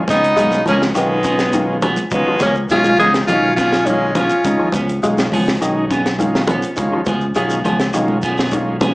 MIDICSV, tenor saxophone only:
0, 0, Header, 1, 2, 480
1, 0, Start_track
1, 0, Tempo, 581959
1, 1746, Time_signature, 4, 2, 24, 8
1, 7374, End_track
2, 0, Start_track
2, 0, Title_t, "Tenor saxophone"
2, 0, Program_c, 0, 66
2, 82, Note_on_c, 0, 63, 102
2, 522, Note_off_c, 0, 63, 0
2, 564, Note_on_c, 0, 61, 80
2, 668, Note_off_c, 0, 61, 0
2, 795, Note_on_c, 0, 59, 83
2, 1477, Note_off_c, 0, 59, 0
2, 1755, Note_on_c, 0, 59, 90
2, 1974, Note_off_c, 0, 59, 0
2, 1997, Note_on_c, 0, 61, 91
2, 2102, Note_off_c, 0, 61, 0
2, 2235, Note_on_c, 0, 65, 106
2, 2454, Note_off_c, 0, 65, 0
2, 2470, Note_on_c, 0, 68, 100
2, 2577, Note_off_c, 0, 68, 0
2, 2698, Note_on_c, 0, 65, 100
2, 2924, Note_off_c, 0, 65, 0
2, 2938, Note_on_c, 0, 65, 102
2, 3181, Note_on_c, 0, 61, 90
2, 3194, Note_off_c, 0, 65, 0
2, 3423, Note_off_c, 0, 61, 0
2, 3431, Note_on_c, 0, 65, 83
2, 3875, Note_off_c, 0, 65, 0
2, 7374, End_track
0, 0, End_of_file